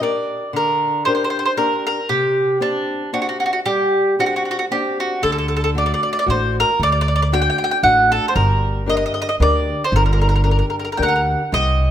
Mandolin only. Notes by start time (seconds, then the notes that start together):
0.03 D5
0.56 A#4
1.05 C5
1.15 C5
1.24 C5
1.30 C5
1.39 C5
1.45 C5
1.57 A#4
1.87 A#4
2.09 G4
2.62 D4
3.14 F#4
3.22 F#4
3.29 F#4
3.40 F#4
3.46 F#4
3.53 F#4
3.66 G4
4.20 F#4
4.26 F#4
4.36 F#4
4.45 F#4
4.51 F#4
4.59 F#4
4.72 G4
5.00 F#4
5.23 A4
5.32 A4
5.38 A4
5.48 A4
5.57 A4
5.64 A4
5.78 D5
5.86 D5
5.94 D5
6.03 D5
6.13 D5
6.19 D5
6.30 C5
6.60 A#4
6.83 D5
6.92 D5
7.01 D5
7.08 D5
7.16 D5
7.22 D5
7.34 G5
7.42 G5
7.50 G5
7.58 G5
7.64 G5
7.71 G5
7.83 F#5
8.12 A4
8.28 C5
8.36 A#4
8.90 D#5
8.97 D#5
9.06 D#5
9.14 D#5
9.22 D#5
9.29 D#5
9.42 D5
9.84 C5
9.96 A#4
10.06 A#4
10.13 A#4
10.21 A#4
10.29 A#4
10.36 A#4
10.44 A#4
10.51 A#4
10.59 A#4
10.70 A#4
10.79 A#4
10.85 A#4
10.92 A#4
10.97 G5
11.02 A#4 F#5
11.08 A#4
11.16 A#4
11.54 D#5